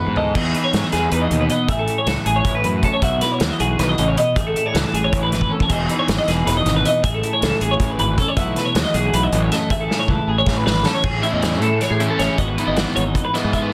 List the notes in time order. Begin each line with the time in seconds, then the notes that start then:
Already playing: G#2 E3 D#4 F#4
0.00 B3 B4
0.07 G#2
0.16 A4 D#5, floor tom
0.35 E2 E3 B3 D#4 G#4 D#5, kick, crash
0.54 D#4 B4, closed hi-hat
0.64 C#5
0.73 G#2 E3, snare, closed hi-hat
0.83 D#5
0.92 E2 G#4 B4, snare, closed hi-hat
1.11 E2 D#4 B4, closed hi-hat
1.22 D#5
1.30 D#2 B2, closed hi-hat
1.41 B4
1.49 B3 D#5, closed hi-hat
1.68 A1 A2 G#4 E5, kick, closed hi-hat
1.79 A4
1.87 E4, closed hi-hat
1.98 C#5
2.07 C#2 E3 A4, snare, closed hi-hat
2.26 A1 G#4, closed hi-hat
2.36 C#5
2.45 A1 E4, kick, closed hi-hat
2.55 B4
2.64 F#2 E3 B4, closed hi-hat
2.83 C#4 A4, kick, closed hi-hat
2.93 C#5
3.02 B1 B2 F#4 E5, kick, closed hi-hat
3.21 E4 B4, snare, closed hi-hat
3.32 C#5
3.40 D#2 E3, snare, closed hi-hat
3.50 D#5
3.60 B1 F#4 G#4, closed hi-hat
3.78 B1 D#3 B4, snare, closed hi-hat
3.89 D#5
3.98 A1 C#3, closed hi-hat
4.08 C#5
4.17 B2 D#5, closed hi-hat
4.36 A1 A2 G#4 E5, kick, closed hi-hat
4.47 A4
4.56 E4, closed hi-hat
4.66 C#5
4.74 C#2 E3 A4, snare, closed hi-hat
4.93 A1 G#4, closed hi-hat
5.04 C#5
5.12 A1 E4, kick, closed hi-hat
5.23 B4
5.31 G#1 E3 B4, snare, closed hi-hat
5.41 kick
5.50 C#4 A4
5.60 C#5, kick
5.68 E1 E2 G#4 D#5, kick, closed hi-hat, crash
5.89 D#4 B4, closed hi-hat
5.99 C#5
6.07 G#1 E3, snare, closed hi-hat
6.18 D#5
6.28 E1 G#4 B4, snare, closed hi-hat
6.46 E1 D#4 B4, snare, closed hi-hat
6.57 D#5
6.65 G#1 B2, snare, closed hi-hat
6.76 B4
6.85 B3 D#5, closed hi-hat
7.03 A1 A2 G#4 E5, kick, closed hi-hat
7.14 A4
7.23 E4, closed hi-hat
7.33 C#5
7.42 C#2 E3 A4, snare, closed hi-hat
7.61 A1 G#4, closed hi-hat
7.71 C#5
7.80 A1 E4, kick, closed hi-hat
7.90 B4
7.98 G#1 E3 B4, closed hi-hat
8.18 C#4 A4, kick, closed hi-hat
8.28 C#5
8.37 B1 B2 E3 A3 E4 E5, kick, closed hi-hat
8.41 F#4
8.56 E4 B4, snare, closed hi-hat
8.65 C#5
8.75 D#2 E3, snare, closed hi-hat
8.84 D#5
8.94 B1 F#4 G#4, closed hi-hat
9.13 B1 E4 B4, closed hi-hat
9.23 D#5
9.32 A1 F#2, closed hi-hat
9.42 C#5
9.52 A3 D#5, snare, closed hi-hat
9.70 A1 A2 G#4 E5, kick, closed hi-hat
9.81 A4
9.90 E4, snare
9.99 C#5
10.08 C#2 E3 A4, kick
10.27 A1 G#4
10.38 C#5
10.46 A1 E4, kick, snare
10.56 B4
10.66 G#1 E3 B4, snare
10.85 C#4 A4, snare
10.95 C#5
11.03 A1 A2 G#4, kick, crash
11.23 E3 A3 C#4 E4 E5, closed hi-hat
11.33 E2 D#5
11.42 E3 A3 C#4 E4 G#4, snare, closed hi-hat
11.52 C#5
11.61 A2 E4 A4, closed hi-hat
11.80 E3 C#5, snare, closed hi-hat
11.90 A2 G#4
12.00 E3 A3 C#4 E4, closed hi-hat
12.10 A4
12.19 A1 E3 A3 C#4 E4 G#4 C#5, snare, closed hi-hat
12.38 G#1 G#2 E3 B3 D#4 F#4 D#5, kick, closed hi-hat
12.48 B4
12.58 E3 G#3 B3 D#4 E4, closed hi-hat
12.67 G#1 D#5
12.76 E3 G#3 B3 E4 F#4 F#5, snare, closed hi-hat
12.96 G#1 D#4 C#5, closed hi-hat
13.06 D#5
13.15 E3, kick, closed hi-hat
13.25 B4
13.33 E3 G#3 B3 E4 D#5, snare, closed hi-hat
13.44 G#2
13.53 E3 G#3 B3 E4 A4 E5, kick, closed hi-hat
13.63 B4